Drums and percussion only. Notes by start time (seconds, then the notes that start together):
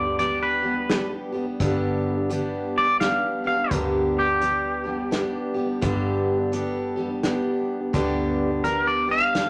0.19 closed hi-hat
0.90 snare, closed hi-hat
1.60 kick, closed hi-hat
2.30 closed hi-hat
3.01 snare, closed hi-hat
3.71 kick, closed hi-hat
4.42 closed hi-hat
5.12 snare, closed hi-hat
5.82 kick, closed hi-hat
6.53 closed hi-hat
7.23 snare, closed hi-hat
7.94 kick, closed hi-hat
8.65 closed hi-hat
9.35 snare, closed hi-hat